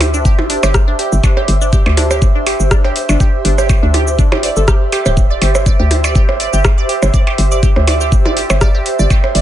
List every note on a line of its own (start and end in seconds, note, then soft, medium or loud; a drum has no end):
0.00 0.27 D2 loud
0.00 9.41 G4 medium
0.00 9.41 C5 medium
0.00 9.41 E5 medium
0.00 open hi-hat medium
0.00 percussion blips medium
0.14 0.17 D4 medium
0.14 cabasa medium
0.25 0.57 G1 medium
0.25 0.33 G4 medium
0.25 kick loud
0.25 cabasa soft
0.39 percussion blips loud
0.50 0.53 D4 medium
0.50 open hi-hat loud
0.63 0.94 G1 medium
0.63 0.70 G4 medium
0.63 percussion blips medium
0.63 cabasa medium
0.63 percussion blips medium
0.74 kick loud
0.74 cross-stick loud
0.74 cabasa soft
0.88 0.90 D4 medium
0.99 1.07 G4 medium
0.99 open hi-hat medium
1.12 1.21 G1 loud
1.12 cabasa soft
1.24 1.27 D4 medium
1.24 kick loud
1.24 cabasa soft
1.24 percussion blips medium
1.37 1.44 G4 medium
1.37 percussion blips medium
1.48 1.80 G1 loud
1.48 open hi-hat medium
1.61 1.64 D4 medium
1.61 cabasa soft
1.73 1.81 G4 medium
1.73 kick loud
1.73 cabasa soft
1.86 2.23 D2 loud
1.86 percussion blips medium
1.97 2.01 D4 medium
1.97 open hi-hat loud
1.97 percussion blips medium
2.11 2.18 G4 medium
2.11 percussion blips medium
2.11 cabasa medium
2.22 2.54 G1 medium
2.22 kick loud
2.22 cabasa soft
2.35 2.38 D4 medium
2.46 2.55 G4 medium
2.46 open hi-hat medium
2.46 percussion blips medium
2.60 2.91 G1 medium
2.60 cabasa soft
2.71 2.74 D4 medium
2.71 kick loud
2.71 cross-stick loud
2.71 cabasa soft
2.84 2.91 G4 medium
2.84 percussion blips medium
2.96 open hi-hat loud
3.09 3.17 G1 loud
3.09 3.12 D4 medium
3.09 cabasa soft
3.09 percussion blips medium
3.20 3.29 G4 medium
3.20 kick loud
3.20 cabasa soft
3.45 3.77 G1 loud
3.45 3.48 D4 medium
3.45 open hi-hat medium
3.58 3.65 G4 medium
3.58 percussion blips medium
3.58 cabasa soft
3.69 kick loud
3.69 cabasa soft
3.69 percussion blips medium
3.83 4.20 D2 loud
3.83 3.86 D4 medium
3.94 4.02 G4 medium
3.94 open hi-hat loud
3.94 percussion blips medium
4.07 cabasa medium
4.19 4.51 G1 medium
4.19 4.22 D4 medium
4.19 kick loud
4.19 cabasa soft
4.32 4.39 G4 medium
4.32 percussion blips medium
4.43 4.49 D5 medium
4.43 open hi-hat loud
4.57 4.88 G1 medium
4.57 4.64 A4 medium
4.57 cabasa soft
4.68 4.71 G4 medium
4.68 kick loud
4.68 cross-stick loud
4.68 cabasa soft
4.92 4.98 G4 loud
4.92 open hi-hat loud
4.92 percussion blips medium
5.06 5.37 D1 loud
5.06 5.09 G4 medium
5.06 percussion blips medium
5.06 cabasa soft
5.17 kick loud
5.17 cabasa soft
5.30 5.35 D5 medium
5.42 5.74 G1 loud
5.42 5.50 G4 medium
5.42 open hi-hat medium
5.42 percussion blips medium
5.55 percussion blips medium
5.55 cabasa soft
5.66 5.72 D5 medium
5.66 kick loud
5.66 cabasa soft
5.79 6.17 D2 loud
5.79 5.86 G4 medium
5.91 open hi-hat loud
5.91 percussion blips medium
6.04 6.09 D5 medium
6.04 cabasa medium
6.04 percussion blips medium
6.15 6.48 G1 medium
6.15 6.24 G4 medium
6.15 kick loud
6.15 cabasa soft
6.29 percussion blips medium
6.40 6.45 D5 medium
6.40 open hi-hat medium
6.53 6.84 G1 medium
6.53 6.60 G4 medium
6.53 cabasa medium
6.65 kick loud
6.65 cross-stick loud
6.65 cabasa soft
6.65 percussion blips medium
6.78 6.82 D5 medium
6.89 6.97 G4 medium
6.89 open hi-hat medium
7.02 7.11 G1 loud
7.02 percussion blips medium
7.02 cabasa soft
7.14 7.19 D5 medium
7.14 kick loud
7.14 cabasa soft
7.27 7.34 G4 medium
7.27 percussion blips medium
7.38 7.71 G1 loud
7.38 open hi-hat medium
7.52 7.56 D5 medium
7.52 cabasa medium
7.63 7.71 G4 medium
7.63 kick loud
7.63 cabasa soft
7.76 8.14 D2 loud
7.76 percussion blips medium
7.87 7.93 D5 medium
7.87 open hi-hat medium
7.87 percussion blips medium
8.01 8.08 G4 medium
8.01 cabasa medium
8.12 8.44 G1 medium
8.12 kick loud
8.12 cabasa soft
8.25 8.30 D5 medium
8.25 percussion blips medium
8.37 8.45 G4 medium
8.37 open hi-hat medium
8.50 8.81 G1 medium
8.50 percussion blips medium
8.50 cabasa medium
8.50 percussion blips medium
8.61 8.67 D5 medium
8.61 kick loud
8.61 cross-stick loud
8.61 cabasa soft
8.75 8.82 G4 medium
8.86 open hi-hat medium
8.99 9.07 G1 loud
8.99 9.04 D5 medium
8.99 cabasa soft
9.10 9.19 G4 medium
9.10 kick loud
9.10 cabasa soft
9.10 percussion blips medium
9.24 percussion blips medium
9.35 9.41 G1 loud
9.35 9.40 D5 medium
9.35 open hi-hat medium